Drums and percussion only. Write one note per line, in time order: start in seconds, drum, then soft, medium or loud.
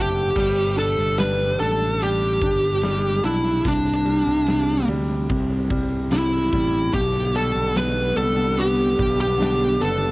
0.36 kick loud
0.36 crash loud
0.77 ride medium
1.18 snare loud
1.18 ride medium
1.59 ride medium
2.00 ride medium
2.41 kick loud
2.41 ride medium
2.82 snare loud
2.82 ride medium
3.24 ride medium
3.65 kick loud
3.65 ride medium
4.06 ride medium
4.47 snare loud
4.47 ride medium
4.88 ride medium
5.29 kick loud
5.29 ride medium
5.70 kick loud
5.70 ride medium
6.11 snare loud
6.11 ride medium
6.53 kick loud
6.53 ride medium
6.93 kick loud
6.93 ride medium
7.35 ride medium
7.75 snare loud
7.75 ride medium
8.16 ride medium
8.57 ride medium
8.99 kick loud
8.99 ride medium
9.40 snare loud
9.40 ride medium
9.81 ride medium